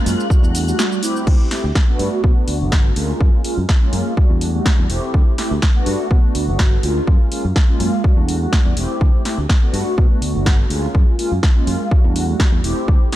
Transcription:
Already playing: G#3 A#3 C#4 F4 F#6
0.06 F#2, open hi-hat, cabasa
0.20 cabasa
0.30 kick, cabasa
0.43 E2, cabasa
0.55 open hi-hat, cabasa
0.67 G3 A3 D4 F#4, cabasa
0.79 snare, cabasa
0.92 cabasa
1.02 A3 C4 E4 G4, open hi-hat, cabasa
1.16 cabasa
1.27 D2, kick, crash
1.50 A3 C4 E4 G4, snare, open hi-hat
1.64 D2
1.75 kick, snare
1.87 A3 B3 D4 F#4
1.99 G2, open hi-hat
2.23 B2 A3 B3 F#4, kick
2.48 D2, open hi-hat
2.60 G1 A3 B3 D4 F#4
2.72 kick, snare
2.96 D2 G#3 A#3 C#4 F4, open hi-hat
3.20 F#2, kick
3.44 G#3 A#3 C#4 F4, open hi-hat
3.57 F#2
3.69 kick, snare
3.81 G#3 A#3 C#4 F4
3.93 F#2, open hi-hat
4.16 G3 A3 D4 F#4, kick
4.30 E2
4.41 open hi-hat
4.54 G3 A3 D4 F#4
4.66 kick, snare
4.79 E2
4.89 E1 A3 C4 E4 G4, open hi-hat
5.14 D2, kick
5.37 A3 C4 E4 G4, snare, open hi-hat
5.51 D2
5.62 kick, snare
5.75 A3 B3 D4 F#4
5.86 G2, open hi-hat
6.11 B2 B3 F#4, kick
6.35 D2, open hi-hat
6.47 G1 A3 B3 D4 F#4
6.59 kick, snare
6.83 D2 G#3 A#3 C#4 F4, open hi-hat
7.07 F#2, kick
7.31 G#3 A#3 C#4 F4, open hi-hat
7.45 F#2
7.56 kick, snare
7.68 G#3 A#3 C#4 F4
7.80 F#2, open hi-hat
8.04 G3 A3 D4, kick
8.17 E2
8.29 open hi-hat
8.41 G3 A3 D4 F#4
8.53 kick, snare
8.65 E2
8.76 E1 A3 C4 E4 G4, open hi-hat
9.01 D2, kick
9.25 A3 C4 E4 G4, snare, open hi-hat
9.38 D2
9.49 kick, snare
9.62 A3 B3 D4 F#4
9.73 G2, open hi-hat
9.98 B2, kick
10.22 D2, open hi-hat
10.34 G1 A3 B3 D4 F#4
10.46 kick, snare
10.69 D2 G#3 A#3 C#4 F4, open hi-hat
10.95 F#2, kick
11.18 G#3 A#3 C#4 F4, open hi-hat
11.32 F#2
11.43 kick, snare
11.55 G#3 A#3 C#4 F4
11.67 F#2, open hi-hat
11.91 G3 A3 F#4, kick
12.04 E2
12.16 open hi-hat
12.28 G3 A3 D4 F#4
12.40 kick, snare
12.52 E2
12.63 E1 A3 C4 E4 G4, open hi-hat
12.88 D2, kick
13.12 A3 C4 E4 G4, snare, open hi-hat

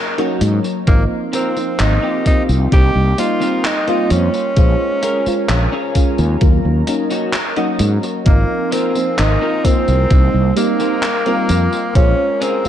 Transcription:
Already playing: A#4 C#5 D#5 A#5
0.18 F#3 A#3 C#4 D#4 F#4 C#5, closed hi-hat
0.41 G#2, closed hi-hat, tambourine
0.64 muted clean electric guitar stroke, tambourine
0.87 G#1 F3 A#3 C4 D#4 F5 C6, kick, closed hi-hat, tambourine
1.33 C4 F4 A#4, closed hi-hat, tambourine
1.56 F3 A#3 C4 D#4, tambourine
1.79 G#1 D#4, muted clean electric guitar stroke, clap, closed hi-hat, tambourine
2.03 C4 F4 G4
2.25 F3 A#3 C4 D#4, kick, closed hi-hat, tambourine
2.49 C2, tambourine
2.72 C2 G3 A#3 C4 D#4 G4 D#5 G5, kick, closed hi-hat, tambourine
2.95 C2
3.18 G3 A#3 C4 D#4 F4, closed hi-hat, tambourine
3.41 C4 D#4 A#4, tambourine
3.65 D#4, clap, closed hi-hat, tambourine
3.87 G3 A#3 C4 D#4 F4 C5, closed hi-hat
4.10 F2 C#4, closed hi-hat, tambourine
4.34 muted clean electric guitar stroke, tambourine
4.56 A#1 G#3 C#4 F4 A#4 C5 F5 G#5 A#5, kick, closed hi-hat, tambourine
5.02 C#4 G#4 A#4, closed hi-hat, tambourine
5.26 G#3 C#4 F4 C5, muted fretless electric bass stroke, tambourine
5.49 A#1, muted clean electric guitar stroke, clap, closed hi-hat, tambourine
5.72 C#4 G#4 C#5
5.95 G#3 C#4 F4, kick, closed hi-hat, tambourine
6.18 D#2, tambourine
6.41 D#2 F#3 A#3 C#4 F4 C#5 D#5, kick, closed hi-hat, tambourine
6.65 D#2
6.87 F#3 A#3 C#4 D#4, closed hi-hat, tambourine
7.10 D#4 F#4 C#5, tambourine
7.33 clap, closed hi-hat, tambourine
7.56 F#3 A#3 C#4 D#4 F#4 D#5, closed hi-hat
7.79 G#2, closed hi-hat, tambourine
8.03 muted clean electric guitar stroke, tambourine
8.25 G#1 F3 A#3 C4 D#4 A#4 F5 G#5 C6, kick, closed hi-hat, tambourine
8.72 C4 F4 A#4, closed hi-hat, tambourine
8.95 F3 A#3 C4 D#4, tambourine
9.18 G#1 D#4, muted clean electric guitar stroke, clap, closed hi-hat, tambourine
9.41 C4 F4 A#4
9.64 F3 A#3 C4 D#4, kick, closed hi-hat, tambourine
9.88 C2, tambourine
10.10 C2 G3 A#3 C4 D#4 A#4 D#5 G5, kick, closed hi-hat, tambourine
10.34 C2
10.56 G3 A#3 C4 D#4, closed hi-hat, tambourine
10.80 C4 D#4 A#4, tambourine
11.03 clap, closed hi-hat, tambourine
11.26 G3 A#3 C4 D#4 F4 A#4, closed hi-hat
11.49 F2, closed hi-hat, tambourine
11.73 muted clean electric guitar stroke, tambourine
11.95 A#1 G#3 C#4 F4 C5 F5 G#5 A#5, kick, closed hi-hat, tambourine
12.41 C4 C#4 G#4 A#4, closed hi-hat, tambourine
12.64 G#3 C#4 C5, muted fretless electric bass stroke, tambourine

